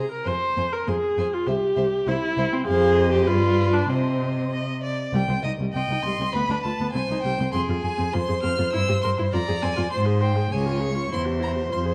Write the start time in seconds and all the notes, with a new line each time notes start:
Already playing: A#5
0.00 G#4
0.12 A#4
0.24 F2 C5 G#5
0.57 F2 C5 G#5
0.72 A#4
0.87 F2 G#4 C5 G#5
1.18 F2 C5 G#5
1.33 F4
1.47 C2 G4 C5 E5
1.76 C2 C5 E5
2.07 C2 E4 C5 E5
2.37 C2 C5 E5
2.53 C4
2.67 F2 G#4 C5 F5
2.97 D#5
3.12 G4
3.27 G2 F4 B4 D5
3.73 D4
3.89 C3 C4 C5 D#5
4.52 D#5
4.83 D5
5.13 C2 G3 G5
5.29 C2 C4
5.44 C2 D#4 D#5
5.59 C2 G3
5.74 C2 C4 D#5 G5
5.89 C2 D#4
6.02 C2 G3 C6
6.19 C2 C4
6.33 D2 B3 B4 B5
6.49 D2 D4
6.63 D2 F4 A5
6.79 D2 B3
6.92 C2 C4 C5 G#5
7.09 C2 D#4
7.22 C2 G3 G5
7.39 C2 C4
7.52 F2 C4 G#4 C6
7.69 F2 F4
7.82 F2 G#4 G#5
7.97 F2 C4
8.13 F2 F4 C5 C6
8.28 F2 G#4
8.43 F2 C4 F6
8.58 F2 F4
8.73 G2 E4 E6
8.88 G2 G4
9.02 G2 A#4 C6
9.18 G2 E4
9.32 F2 F4 D5 A#5
9.47 F2 G#4
9.62 F2 C4 G#5
9.76 F2 F4
9.91 G#2 C5 C6
10.05 G#4
10.21 C5 G5
10.35 G#4
10.50 C#2 G#4 C#5 G#5
10.66 F4
10.80 G#4 C#6
10.95 F4
11.10 E2 E4 C5 C6
11.25 G4
11.40 E4 A#5
11.55 G4
11.70 F2 F4 C6
11.85 G#4